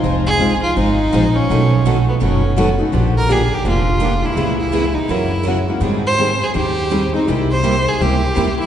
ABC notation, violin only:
X:1
M:4/4
L:1/8
Q:"Swing" 1/4=166
K:Ab
V:1 name="Violin"
z A2 F E3 D- | D3 =B, ^C3 z | z B A G F3 =E- | =E _F2 _E F3 z |
z c2 A G3 E | z c2 A G3 =E |]